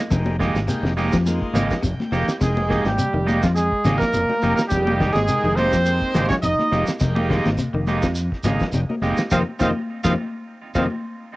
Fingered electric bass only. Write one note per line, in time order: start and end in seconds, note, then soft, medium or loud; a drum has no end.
0.11 0.51 F1 loud
0.54 0.67 G#1 medium
0.83 1.09 F1 loud
1.13 1.39 F2 medium
1.53 1.68 G#1 loud
1.84 1.98 F1 loud
1.98 muted fingered electric bass stroke soft
2.12 2.26 F1 medium
2.41 2.80 F1 medium
2.85 2.97 G#1 medium
3.14 3.39 F1 loud
3.43 3.69 F2 medium
3.85 3.98 G#1 loud
4.13 4.27 F1 loud
4.43 4.56 F1 loud
4.58 muted fingered electric bass stroke soft
4.72 5.11 F1 loud
5.15 5.27 G#1 medium
5.44 5.69 F1 medium
5.73 5.98 F2 loud
6.15 6.29 G#1 loud
6.43 6.57 F1 loud
6.72 6.86 F1 loud
6.88 muted fingered electric bass stroke soft
7.01 7.40 F1 loud
7.45 7.57 G#1 medium
7.73 7.99 F1 loud
8.03 8.29 F2 medium
8.44 8.58 G#1 medium
8.73 8.87 F1 loud
9.01 9.16 F1 medium
9.32 9.43 F2 medium
9.61 9.72 F2 medium
10.04 10.14 F2 medium
10.75 10.87 F2 medium